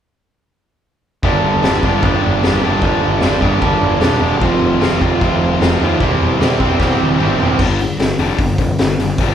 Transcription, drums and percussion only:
1.23 kick, floor tom
1.44 floor tom
1.63 snare, floor tom
1.83 kick, floor tom
2.03 kick, floor tom
2.23 floor tom
2.43 snare, floor tom
2.62 floor tom
2.81 kick, floor tom
3.01 floor tom
3.21 snare, floor tom
3.42 kick, floor tom
3.61 kick, floor tom
3.81 floor tom
4.01 snare, floor tom
4.21 floor tom
4.40 kick, floor tom
4.61 floor tom
4.81 snare, floor tom
5.01 kick, floor tom
5.21 kick, floor tom
5.42 floor tom
5.61 snare, floor tom
5.81 floor tom
6.00 kick, floor tom
6.22 floor tom
6.41 snare, floor tom
6.60 kick, floor tom
6.80 kick, snare
7.00 high tom
7.20 mid tom
7.40 floor tom
7.59 kick, crash
7.79 open hi-hat
8.00 snare, open hi-hat
8.18 open hi-hat
8.39 kick, open hi-hat
8.58 kick, open hi-hat
8.79 snare, open hi-hat
8.99 open hi-hat
9.18 kick, open hi-hat

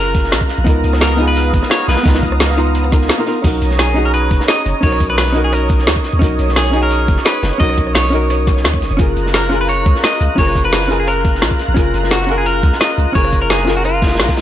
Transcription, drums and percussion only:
0.15 kick, closed hi-hat, cabasa
0.24 snare
0.32 snare, closed hi-hat
0.41 kick
0.48 snare, closed hi-hat, cabasa
0.66 kick, closed hi-hat
0.84 closed hi-hat, cabasa
0.93 cross-stick, snare
1.01 snare, closed hi-hat
1.11 snare, closed hi-hat
1.18 closed hi-hat, cabasa
1.28 closed hi-hat
1.36 closed hi-hat
1.53 kick, closed hi-hat, cabasa
1.62 cross-stick, snare
1.70 snare, closed hi-hat
1.80 cross-stick
1.89 snare, closed hi-hat, cabasa
1.97 snare, closed hi-hat
2.06 kick, snare, closed hi-hat
2.15 snare, closed hi-hat
2.22 kick, closed hi-hat, cabasa
2.32 cross-stick
2.40 snare, closed hi-hat
2.49 snare, closed hi-hat
2.58 closed hi-hat, cabasa
2.67 closed hi-hat, cabasa
2.75 closed hi-hat
2.84 cross-stick, closed hi-hat
2.92 kick, snare, closed hi-hat, cabasa
3.01 snare
3.09 snare, closed hi-hat
3.27 snare, closed hi-hat, cabasa
3.36 cabasa
3.44 kick, closed hi-hat, crash
3.62 closed hi-hat, cabasa
3.71 snare
3.79 snare, closed hi-hat
3.87 snare
3.96 closed hi-hat, cabasa
4.13 closed hi-hat
4.31 kick, closed hi-hat, cabasa
4.40 snare
4.48 snare, closed hi-hat
4.57 closed hi-hat
4.66 closed hi-hat, cabasa
4.75 cabasa
4.83 kick, closed hi-hat, open hi-hat
4.92 cross-stick
5.00 kick, closed hi-hat, cabasa
5.10 cross-stick
5.17 snare, closed hi-hat
5.27 snare
5.35 closed hi-hat, cabasa
5.53 cross-stick, closed hi-hat
5.69 kick, closed hi-hat, cabasa
5.79 snare
5.87 snare, closed hi-hat
5.96 kick, closed hi-hat
6.04 snare, closed hi-hat, cabasa
6.13 cabasa
6.22 kick, closed hi-hat
6.39 closed hi-hat, cabasa
6.48 snare
6.56 snare, closed hi-hat
6.66 snare
6.73 closed hi-hat, cabasa
6.91 closed hi-hat
7.08 kick, closed hi-hat, cabasa
7.16 snare
7.25 snare, closed hi-hat
7.35 closed hi-hat
7.43 snare, closed hi-hat, cabasa
7.52 snare, cabasa
7.60 kick, closed hi-hat, open hi-hat
7.69 cross-stick
7.78 kick, closed hi-hat, cabasa
7.87 cross-stick
7.95 snare, closed hi-hat
8.05 snare
8.12 closed hi-hat, cabasa
8.22 closed hi-hat
8.30 cross-stick, closed hi-hat, cabasa
8.47 kick, snare, closed hi-hat, cabasa
8.57 snare
8.64 snare, closed hi-hat
8.74 kick, closed hi-hat
8.82 snare, closed hi-hat, cabasa
8.91 closed hi-hat, cabasa
8.99 kick, closed hi-hat
9.17 closed hi-hat, cabasa
9.26 snare
9.34 snare, closed hi-hat
9.43 snare
9.52 closed hi-hat, cabasa
9.68 closed hi-hat
9.86 kick, closed hi-hat, cabasa
9.95 snare
10.03 snare, closed hi-hat
10.13 closed hi-hat
10.21 closed hi-hat, cabasa
10.30 cabasa
10.38 kick, closed hi-hat, open hi-hat
10.47 cross-stick
10.55 kick, closed hi-hat, cabasa
10.64 cross-stick
10.72 snare, closed hi-hat
10.82 snare
10.90 closed hi-hat, cabasa
11.07 cross-stick, closed hi-hat
11.25 kick, closed hi-hat, cabasa
11.35 snare
11.42 snare, closed hi-hat
11.51 kick, closed hi-hat
11.59 snare, closed hi-hat, cabasa
11.68 cabasa
11.76 kick, closed hi-hat
11.94 closed hi-hat, cabasa
12.03 snare
12.11 snare, closed hi-hat
12.20 snare
12.29 closed hi-hat, cabasa
12.46 closed hi-hat
12.63 kick, closed hi-hat, cabasa
12.73 snare
12.81 snare, closed hi-hat
12.90 closed hi-hat
12.98 closed hi-hat, cabasa
13.07 cabasa
13.15 kick, closed hi-hat, open hi-hat
13.25 cross-stick
13.33 kick, closed hi-hat, cabasa
13.42 cross-stick
13.50 snare, closed hi-hat
13.59 snare
13.67 snare, closed hi-hat, cabasa
13.76 closed hi-hat
13.84 cross-stick, closed hi-hat, cabasa
13.94 closed hi-hat
14.02 kick, snare, closed hi-hat, cabasa
14.07 snare, closed hi-hat
14.11 snare, closed hi-hat
14.15 snare, closed hi-hat
14.20 snare, closed hi-hat
14.24 snare, closed hi-hat
14.28 kick, snare, closed hi-hat
14.37 snare, closed hi-hat, cabasa

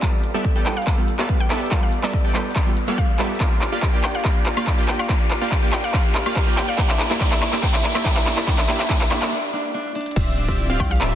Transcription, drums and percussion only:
0.02 kick, clap, closed hi-hat
0.24 closed hi-hat
0.45 kick, closed hi-hat
0.66 clap, closed hi-hat
0.71 closed hi-hat
0.77 closed hi-hat
0.82 closed hi-hat
0.87 kick, clap, closed hi-hat
1.08 closed hi-hat
1.19 clap
1.29 kick, closed hi-hat
1.50 clap, closed hi-hat
1.56 closed hi-hat
1.61 closed hi-hat
1.66 closed hi-hat
1.71 kick, clap, closed hi-hat
1.92 closed hi-hat
2.04 clap
2.13 kick, closed hi-hat
2.35 clap, closed hi-hat
2.40 closed hi-hat
2.46 closed hi-hat
2.51 closed hi-hat
2.56 kick, clap, closed hi-hat
2.77 closed hi-hat
2.98 kick, closed hi-hat
3.19 clap, closed hi-hat
3.25 closed hi-hat
3.30 closed hi-hat
3.35 closed hi-hat
3.40 kick, clap, closed hi-hat
3.61 clap, closed hi-hat
3.82 kick, clap, closed hi-hat
4.04 clap, closed hi-hat, high woodblock
4.09 closed hi-hat
4.15 closed hi-hat
4.20 closed hi-hat
4.25 kick, clap
4.46 clap, closed hi-hat
4.57 high woodblock
4.67 kick, clap, closed hi-hat
4.88 clap, closed hi-hat
4.94 closed hi-hat
4.99 closed hi-hat, high woodblock
5.04 closed hi-hat
5.09 kick, clap, closed hi-hat
5.31 clap, closed hi-hat
5.51 kick, clap, closed hi-hat
5.73 clap, closed hi-hat, high woodblock
5.78 closed hi-hat
5.84 closed hi-hat
5.89 closed hi-hat
5.94 kick, clap, closed hi-hat
6.15 clap, closed hi-hat
6.26 high woodblock
6.36 kick, clap, closed hi-hat
6.57 clap, closed hi-hat
6.63 closed hi-hat
6.68 closed hi-hat
6.73 closed hi-hat
6.78 kick, clap, closed hi-hat
6.89 clap
6.99 clap, closed hi-hat
7.11 clap
7.20 kick, clap, closed hi-hat
7.32 clap
7.42 clap, closed hi-hat, high woodblock
7.47 closed hi-hat
7.53 clap, closed hi-hat
7.58 closed hi-hat
7.63 kick, clap, closed hi-hat
7.74 clap
7.84 clap, closed hi-hat
7.95 clap, high woodblock
8.05 kick, clap, closed hi-hat
8.16 clap
8.26 clap, closed hi-hat
8.32 closed hi-hat
8.37 clap, closed hi-hat, high woodblock
8.43 closed hi-hat
8.47 kick, clap, closed hi-hat
8.58 clap
8.69 clap, closed hi-hat
8.80 clap
8.89 kick, clap, closed hi-hat
9.01 clap
9.11 clap, closed hi-hat, high woodblock
9.17 closed hi-hat
9.22 clap, closed hi-hat
9.27 closed hi-hat
9.95 closed hi-hat
10.01 closed hi-hat
10.06 closed hi-hat
10.11 closed hi-hat
10.16 kick, closed hi-hat, crash
10.38 closed hi-hat
10.48 kick
10.59 closed hi-hat
10.80 kick, closed hi-hat, high woodblock
10.85 closed hi-hat
10.91 closed hi-hat
10.96 closed hi-hat
11.01 clap, closed hi-hat

